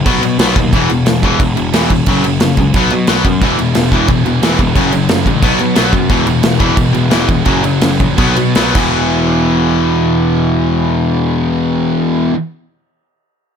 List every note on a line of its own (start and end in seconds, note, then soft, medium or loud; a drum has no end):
0.06 0.20 B1 loud
0.06 0.22 B2 medium
0.06 0.22 F#3 medium
0.06 0.22 B3 medium
0.06 kick loud
0.06 crash medium
0.21 0.38 B2 medium
0.21 0.39 F#3 medium
0.21 crash medium
0.38 0.55 B1 loud
0.38 0.56 B2 loud
0.38 0.56 F#3 loud
0.38 0.57 B3 loud
0.38 snare loud
0.38 crash medium
0.56 0.72 D#2 medium
0.56 0.72 B2 medium
0.56 0.72 F#3 medium
0.56 kick loud
0.56 crash medium
0.72 1.05 E1 loud
0.72 0.90 E2 loud
0.72 0.90 B2 loud
0.72 0.90 E3 loud
0.72 kick loud
0.72 crash medium
0.90 1.06 E2 medium
0.90 1.06 B2 medium
0.90 crash medium
1.06 1.22 E1 loud
1.06 1.22 E2 medium
1.06 1.23 B2 medium
1.06 snare loud
1.06 crash medium
1.22 1.39 E1 medium
1.22 1.40 E2 loud
1.22 1.40 B2 loud
1.22 1.40 E3 loud
1.22 kick medium
1.22 crash medium
1.39 1.55 E1 loud
1.39 1.56 E2 medium
1.39 1.56 B2 medium
1.39 kick loud
1.39 crash medium
1.56 1.73 E1 medium
1.56 1.72 E2 medium
1.56 1.73 B2 medium
1.56 crash medium
1.73 1.89 E1 loud
1.73 1.90 E2 loud
1.73 1.90 B2 loud
1.73 1.90 E3 medium
1.73 snare loud
1.73 crash medium
1.90 2.06 E1 medium
1.90 2.07 E2 medium
1.90 2.07 B2 medium
1.90 kick medium
1.90 crash medium
2.06 2.39 F#1 loud
2.06 2.24 F#2 medium
2.06 2.24 C#3 loud
2.06 2.24 F#3 medium
2.06 kick medium
2.06 crash medium
2.24 2.40 F#2 medium
2.24 2.40 C#3 medium
2.24 crash medium
2.40 2.57 F#1 loud
2.40 2.57 F#2 medium
2.40 2.57 C#3 medium
2.40 snare loud
2.40 crash medium
2.57 2.75 C#2 medium
2.57 2.74 F#2 medium
2.57 2.73 C#3 medium
2.57 kick medium
2.57 crash medium
2.74 2.91 B1 medium
2.74 2.91 B2 medium
2.74 2.92 F#3 medium
2.74 2.92 B3 medium
2.74 kick loud
2.74 crash medium
2.90 3.08 B2 medium
2.90 3.07 B2 medium
2.90 3.07 F#3 medium
2.90 crash medium
3.07 3.24 B1 medium
3.07 3.24 B2 medium
3.07 3.24 F#3 loud
3.07 3.25 B3 loud
3.07 snare loud
3.07 crash medium
3.25 3.43 F#2 medium
3.25 3.40 B2 medium
3.25 3.41 F#3 medium
3.25 kick loud
3.25 crash medium
3.41 3.73 E1 loud
3.41 3.58 E2 medium
3.41 3.58 B2 loud
3.41 3.58 E3 loud
3.41 kick loud
3.41 crash medium
3.58 3.74 E2 medium
3.58 3.74 B2 medium
3.58 3.74 E3 medium
3.58 crash medium
3.75 3.91 E1 loud
3.75 3.91 E2 medium
3.75 3.91 B2 medium
3.75 3.91 E3 loud
3.75 snare loud
3.75 crash medium
3.92 4.08 E1 medium
3.92 4.08 E2 medium
3.92 4.09 B2 loud
3.92 4.09 E3 medium
3.92 kick medium
3.92 crash medium
4.08 4.24 E1 medium
4.08 4.25 E2 medium
4.08 4.25 B2 medium
4.08 4.25 E3 medium
4.08 kick loud
4.08 crash medium
4.25 4.41 E1 medium
4.25 4.41 E2 medium
4.25 4.42 B2 medium
4.25 4.42 E3 medium
4.25 crash soft
4.42 4.58 E1 medium
4.42 4.59 E2 loud
4.42 4.58 B2 medium
4.42 4.59 E3 loud
4.42 snare loud
4.42 crash medium
4.58 4.75 E1 loud
4.58 4.75 E2 medium
4.58 4.75 B2 medium
4.58 4.74 E3 medium
4.58 kick medium
4.58 crash medium
4.76 5.08 F#1 loud
4.76 4.92 F#2 medium
4.76 4.92 C#3 loud
4.76 4.92 F#3 loud
4.76 kick loud
4.76 crash medium
4.92 5.08 F#2 medium
4.92 5.08 C#3 medium
4.92 5.09 F#3 loud
4.92 crash medium
5.09 5.25 F#1 loud
5.09 5.24 F#2 medium
5.09 5.25 C#3 medium
5.09 5.25 F#3 medium
5.09 snare loud
5.09 crash medium
5.26 5.42 A1 medium
5.26 5.42 F#2 medium
5.26 5.42 C#3 medium
5.26 5.42 F#3 loud
5.26 kick medium
5.26 crash medium
5.42 5.59 B1 loud
5.42 5.59 B2 medium
5.42 5.59 F#3 medium
5.42 5.59 B3 medium
5.42 kick loud
5.42 crash medium
5.59 5.76 B2 medium
5.59 5.74 B2 medium
5.59 5.75 F#3 medium
5.59 5.76 B3 medium
5.59 crash medium
5.76 5.92 B1 medium
5.76 5.92 B2 loud
5.76 5.92 F#3 loud
5.76 5.92 B3 loud
5.76 snare loud
5.76 crash medium
5.92 6.09 F#2 medium
5.92 6.09 B2 medium
5.92 6.09 F#3 medium
5.92 6.08 B3 medium
5.92 kick medium
5.92 crash medium
6.10 6.42 E1 loud
6.10 6.25 E2 loud
6.10 6.26 B2 loud
6.10 6.26 E3 medium
6.10 kick loud
6.10 crash medium
6.26 6.42 E2 medium
6.26 6.42 B2 medium
6.26 6.42 E3 medium
6.26 crash medium
6.43 6.59 E1 medium
6.43 6.58 E2 medium
6.43 6.59 B2 medium
6.43 6.58 E3 loud
6.43 snare loud
6.43 crash medium
6.59 6.76 E1 medium
6.59 6.76 E2 loud
6.59 6.76 B2 medium
6.59 6.76 E3 loud
6.59 kick medium
6.59 crash medium
6.77 6.94 E1 medium
6.77 6.92 E2 medium
6.77 6.92 B2 medium
6.77 6.91 E3 medium
6.77 kick loud
6.77 crash medium
6.93 7.11 E1 medium
6.93 7.09 E2 medium
6.93 7.10 B2 medium
6.93 7.11 E3 medium
6.93 crash medium
7.10 7.28 E1 medium
7.10 7.27 E2 medium
7.10 7.27 B2 loud
7.10 7.28 E3 loud
7.10 snare loud
7.10 crash medium
7.28 7.46 E1 medium
7.28 7.45 E2 medium
7.28 7.45 B2 medium
7.28 7.45 E3 medium
7.28 kick loud
7.28 crash medium
7.45 7.80 F#1 loud
7.45 7.62 F#2 loud
7.45 7.62 C#3 loud
7.45 7.63 F#3 loud
7.45 kick loud
7.45 crash medium
7.63 7.80 F#2 medium
7.63 7.80 C#3 medium
7.63 7.80 F#3 medium
7.63 crash medium
7.81 7.99 F#1 loud
7.81 7.99 F#2 medium
7.81 7.99 C#3 medium
7.81 7.97 F#3 medium
7.81 snare loud
7.81 crash medium
7.98 8.18 A#1 medium
7.98 8.17 F#2 medium
7.98 8.17 C#3 medium
7.98 8.17 F#3 loud
7.98 kick medium
7.98 crash medium
8.18 8.37 B1 loud
8.18 8.36 B2 medium
8.18 8.36 F#3 medium
8.18 8.37 B3 medium
8.18 kick loud
8.18 crash medium
8.36 8.54 B2 medium
8.36 8.55 B2 medium
8.36 8.55 F#3 medium
8.36 8.54 B3 loud
8.36 crash medium
8.55 8.75 B1 medium
8.55 8.74 B2 medium
8.55 8.75 F#3 medium
8.55 8.75 B3 loud
8.55 snare loud
8.55 crash medium
8.74 12.29 E1 medium
8.74 12.32 E2 medium
8.74 12.34 B2 medium
8.74 12.36 E3 loud
8.74 kick loud
8.74 crash medium